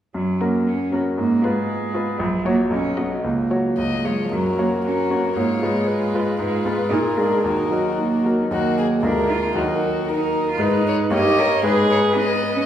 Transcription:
0.14 grand piano F#2, cello F#3
0.40 cello A#3, grand piano C#4 F#4 A#4, viola F#4, violin A#4
0.67 cello C#4
0.91 cello B3, grand piano C#4 F#4 A#4, viola F#4, violin A#4
1.17 grand piano G#2, cello A#3
1.42 cello G#3, grand piano B3 F4 B4, viola F4, violin B4
1.94 grand piano B3 F4 B4, viola F4, violin B4
2.19 grand piano A#1, cello F#3
2.45 grand piano F#3 F#4 C#5, cello A#3, viola F#4, violin C#5
2.70 grand piano B1, cello C#4
2.97 grand piano F#3 F#4 D#5, cello B3, viola F#4, violin D#5
3.24 grand piano C#2, cello A#3
3.50 grand piano F#3 F#4 C#5, viola F#4, violin C#5
3.78 grand piano C#2, violin D#5
3.94 cello G#3
4.05 cello F#3, grand piano G#3 F4 C#5, viola F4, violin C#5
4.21 cello F3
4.32 grand piano F#2, cello F#3, viola F#4, violin A#4
4.58 grand piano A#3 F#4 C#5, cello A#3
4.84 cello C#4, viola F#4, violin A#4
5.10 grand piano A#3 F#4 C#5, cello B3
5.36 grand piano G#2, cello A#3, viola F4, violin C#5
5.62 grand piano G#3 F4 B4, cello G#3
5.88 viola F4, violin B4
6.14 grand piano G#3 F4 B4
6.39 grand piano G#2, cello G#3, viola F4, violin B4
6.65 grand piano G#3 F4 B4, cello B3
6.89 grand piano A#2, cello D#4, viola G#4, violin A#4
7.17 grand piano G#3 F4 A#4, cello D4
7.44 grand piano D#2, cello D#4, viola F#4, violin A#4
7.71 grand piano F#3 D#4 A#4
8.00 cello A#3
8.24 grand piano F#3 D#4 A#4
8.41 cello B3
8.51 grand piano D#2 F#3 D#4 A#4, cello A#3, violin F#4, viola A#4
8.79 violin G#4
9.02 grand piano D2 G#3 F4 A#4, cello D4, violin A#4
9.30 cello F4
9.55 grand piano D#2 F#3 D#4 A#4, cello D#4, violin F#4
10.09 cello D#4, violin A#4
10.50 cello F4
10.58 grand piano G#2 G#3 D#4 B4, cello D#4, viola B4, violin B4
10.88 violin C#5
11.10 grand piano G2 A#3 D#4 C#5, cello G4, viola C#5, violin D#5
11.39 cello A#4
11.63 grand piano G#2 G#3 D#4 B4, cello G#4, viola B4, violin B4
11.91 violin C#5
12.16 cello B3, violin D#5
12.56 cello C#4

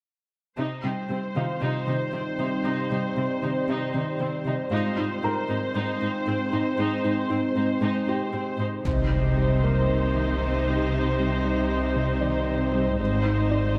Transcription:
0.57 cello section C3, synth pluck C3, ambient pad G3 C4 D#4 C5, viola section D#4 C5
0.83 cello section C3, synth pluck G3, viola section D#4, felt piano G5
1.09 cello section C3, synth pluck G3, viola section C4
1.36 cello section C3, synth pluck D#3, viola section D#4, felt piano F4 F5
1.61 cello section C3, synth pluck C3, viola section D#4
1.87 cello section C3, synth pluck D#3, viola section D#4
2.13 cello section C3, synth pluck D#3, viola section C4
2.39 cello section C3, synth pluck G3, viola section D#4
2.64 cello section C3, synth pluck C3, viola section D#4
2.91 cello section C3, synth pluck G3, viola section D#4
3.17 cello section C3, synth pluck G3, viola section C4
3.43 cello section C3, synth pluck D#3, viola section D#4
3.68 cello section C3, synth pluck C3, viola section D#4
3.94 cello section C3, synth pluck D#3, viola section D#4
4.20 cello section C3, synth pluck D#3, viola section C4
4.46 cello section C3, synth pluck G3, viola section D#4
4.71 cello section G#2, synth pluck G#3, ambient pad G#3 C4 D#4 C5, viola section D#4 C5, felt piano F4 F5
4.98 cello section G#2, synth pluck D#4, viola section D#4
5.23 cello section G#2, viola section C4, synth pluck D#4, felt piano A#4 A#5
5.49 cello section G#2, synth pluck C4, viola section D#4
5.75 cello section G#2, synth pluck G#3, viola section D#4
6.01 cello section G#2, synth pluck C4, viola section D#4
6.27 cello section G#2, viola section C4, synth pluck C4
6.52 cello section G#2, viola section D#4, synth pluck D#4, felt piano C6
6.78 cello section G#2, synth pluck G#3, viola section D#4
7.03 cello section G#2, viola section D#4, synth pluck D#4
7.30 cello section G#2, viola section C4, synth pluck D#4
7.56 cello section G#2, synth pluck C4, viola section D#4
7.81 cello section G#2, synth pluck G#3, viola section D#4
8.07 cello section G#2, synth pluck C4, viola section D#4, felt piano G4 G5
8.33 cello section G#2, viola section C4, synth pluck C4
8.59 cello section G#2, viola section D#4, synth pluck D#4
8.84 double bass section C2, sub bass C2, synth pluck C3, cello section C3, ambient pad G3 C4 D#4 C5, french horn section C4 D#4, viola section D#4 C5, impact
9.11 synth pluck G3
9.38 synth pluck G3
9.63 synth pluck G3, felt piano A#3 A#4
9.89 synth pluck C3
10.14 synth pluck D#3
10.40 synth pluck D#3
10.67 synth pluck G3
10.93 synth pluck C3
11.19 synth pluck G3
11.45 synth pluck G3
11.70 synth pluck G3
11.96 synth pluck C3
12.21 synth pluck D#3, felt piano D5
12.48 synth pluck D#3
12.71 synth pluck G3, felt piano C4 C5
12.98 double bass section G#1, sub bass G#1, cello section G#2, ambient pad G#3 C4 D#4 C5, synth pluck G#3, french horn section C4 D#4, viola section D#4 C5
13.26 synth pluck D#4
13.51 synth pluck D#4, felt piano D5

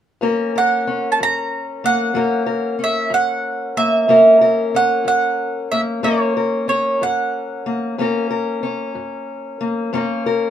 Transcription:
0.21 steel-string acoustic guitar F#2 A#3 C#4 A#4
0.56 steel-string acoustic guitar A#4, mandolin F#5
0.87 steel-string acoustic guitar C#4
1.12 mandolin A5
1.20 steel-string acoustic guitar F#2, mandolin A#5
1.84 steel-string acoustic guitar A#3, mandolin F#5
2.14 steel-string acoustic guitar F#2 A#3 C#4 A#4
2.46 steel-string acoustic guitar A#4
2.79 steel-string acoustic guitar C#4
2.84 mandolin E5
3.10 steel-string acoustic guitar F#2, mandolin F#5
3.77 steel-string acoustic guitar A#3, mandolin E5
4.08 steel-string acoustic guitar F#2 A#3 C#4 A#4
4.41 steel-string acoustic guitar A#4
4.75 steel-string acoustic guitar C#4, mandolin F#5
5.05 steel-string acoustic guitar F#2, mandolin F#5
5.72 steel-string acoustic guitar A#3, mandolin E5
6.03 steel-string acoustic guitar F#2 A#3 C#4 A#4, mandolin C#5
6.37 steel-string acoustic guitar A#4
6.68 steel-string acoustic guitar C#4, mandolin C#5
7.01 steel-string acoustic guitar F#2, mandolin F#5
7.66 steel-string acoustic guitar A#3
7.98 steel-string acoustic guitar F#2 A#3 C#4 A#4
8.31 steel-string acoustic guitar A#4
8.63 steel-string acoustic guitar C#4
8.95 steel-string acoustic guitar F#2
9.61 steel-string acoustic guitar A#3
9.93 steel-string acoustic guitar F#2 A#3 C#4 A#4
10.26 steel-string acoustic guitar A#4

